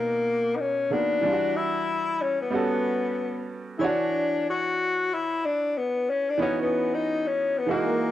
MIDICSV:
0, 0, Header, 1, 3, 480
1, 0, Start_track
1, 0, Tempo, 645161
1, 923, Time_signature, 4, 2, 24, 8
1, 6036, End_track
2, 0, Start_track
2, 0, Title_t, "Tenor saxophone"
2, 0, Program_c, 0, 66
2, 0, Note_on_c, 0, 58, 93
2, 415, Note_on_c, 0, 63, 69
2, 426, Note_off_c, 0, 58, 0
2, 449, Note_on_c, 0, 61, 87
2, 461, Note_off_c, 0, 63, 0
2, 686, Note_on_c, 0, 62, 99
2, 698, Note_off_c, 0, 61, 0
2, 1166, Note_on_c, 0, 64, 108
2, 1177, Note_off_c, 0, 62, 0
2, 1649, Note_on_c, 0, 61, 92
2, 1660, Note_off_c, 0, 64, 0
2, 1792, Note_off_c, 0, 61, 0
2, 1797, Note_on_c, 0, 59, 91
2, 2575, Note_off_c, 0, 59, 0
2, 2816, Note_on_c, 0, 64, 70
2, 2867, Note_on_c, 0, 62, 101
2, 2878, Note_off_c, 0, 64, 0
2, 3335, Note_off_c, 0, 62, 0
2, 3346, Note_on_c, 0, 66, 99
2, 3820, Note_on_c, 0, 64, 104
2, 3831, Note_off_c, 0, 66, 0
2, 4059, Note_on_c, 0, 62, 91
2, 4070, Note_off_c, 0, 64, 0
2, 4299, Note_on_c, 0, 59, 80
2, 4311, Note_off_c, 0, 62, 0
2, 4536, Note_on_c, 0, 61, 87
2, 4547, Note_off_c, 0, 59, 0
2, 4687, Note_on_c, 0, 62, 82
2, 4698, Note_off_c, 0, 61, 0
2, 4770, Note_off_c, 0, 62, 0
2, 4777, Note_on_c, 0, 61, 95
2, 4909, Note_off_c, 0, 61, 0
2, 4922, Note_on_c, 0, 59, 82
2, 5166, Note_on_c, 0, 63, 88
2, 5177, Note_off_c, 0, 59, 0
2, 5406, Note_on_c, 0, 61, 80
2, 5417, Note_off_c, 0, 63, 0
2, 5643, Note_on_c, 0, 59, 82
2, 5654, Note_off_c, 0, 61, 0
2, 5732, Note_on_c, 0, 58, 76
2, 5743, Note_off_c, 0, 59, 0
2, 6036, Note_off_c, 0, 58, 0
2, 6036, End_track
3, 0, Start_track
3, 0, Title_t, "Upright piano"
3, 0, Program_c, 1, 0
3, 0, Note_on_c, 1, 47, 60
3, 0, Note_on_c, 1, 51, 61
3, 0, Note_on_c, 1, 58, 59
3, 0, Note_on_c, 1, 66, 69
3, 644, Note_off_c, 1, 51, 0
3, 650, Note_off_c, 1, 58, 0
3, 657, Note_off_c, 1, 47, 0
3, 662, Note_off_c, 1, 66, 0
3, 671, Note_on_c, 1, 51, 45
3, 679, Note_on_c, 1, 58, 41
3, 684, Note_on_c, 1, 59, 40
3, 692, Note_on_c, 1, 66, 48
3, 904, Note_on_c, 1, 52, 63
3, 915, Note_on_c, 1, 55, 61
3, 917, Note_off_c, 1, 51, 0
3, 921, Note_off_c, 1, 58, 0
3, 923, Note_off_c, 1, 59, 0
3, 927, Note_off_c, 1, 66, 0
3, 928, Note_on_c, 1, 62, 55
3, 939, Note_on_c, 1, 65, 55
3, 988, Note_on_c, 1, 66, 69
3, 991, Note_off_c, 1, 65, 0
3, 1853, Note_off_c, 1, 55, 0
3, 1854, Note_off_c, 1, 52, 0
3, 1864, Note_on_c, 1, 55, 59
3, 1866, Note_off_c, 1, 62, 0
3, 1871, Note_on_c, 1, 59, 54
3, 1878, Note_off_c, 1, 66, 0
3, 1880, Note_on_c, 1, 61, 55
3, 1889, Note_on_c, 1, 66, 52
3, 1899, Note_on_c, 1, 69, 65
3, 2814, Note_off_c, 1, 55, 0
3, 2817, Note_off_c, 1, 59, 0
3, 2820, Note_on_c, 1, 52, 67
3, 2822, Note_off_c, 1, 61, 0
3, 2827, Note_off_c, 1, 66, 0
3, 2832, Note_off_c, 1, 69, 0
3, 2834, Note_on_c, 1, 73, 62
3, 2846, Note_on_c, 1, 62, 60
3, 2859, Note_on_c, 1, 66, 70
3, 4722, Note_off_c, 1, 52, 0
3, 4729, Note_off_c, 1, 73, 0
3, 4735, Note_off_c, 1, 62, 0
3, 4741, Note_off_c, 1, 66, 0
3, 4744, Note_on_c, 1, 52, 67
3, 4754, Note_on_c, 1, 59, 58
3, 4762, Note_on_c, 1, 61, 62
3, 4771, Note_on_c, 1, 63, 60
3, 4780, Note_on_c, 1, 66, 69
3, 5692, Note_off_c, 1, 52, 0
3, 5699, Note_off_c, 1, 59, 0
3, 5703, Note_off_c, 1, 61, 0
3, 5703, Note_on_c, 1, 52, 58
3, 5708, Note_off_c, 1, 63, 0
3, 5712, Note_off_c, 1, 66, 0
3, 5713, Note_on_c, 1, 56, 55
3, 5719, Note_on_c, 1, 58, 55
3, 5730, Note_on_c, 1, 63, 54
3, 5738, Note_on_c, 1, 66, 65
3, 6036, Note_off_c, 1, 52, 0
3, 6036, Note_off_c, 1, 56, 0
3, 6036, Note_off_c, 1, 58, 0
3, 6036, Note_off_c, 1, 63, 0
3, 6036, Note_off_c, 1, 66, 0
3, 6036, End_track
0, 0, End_of_file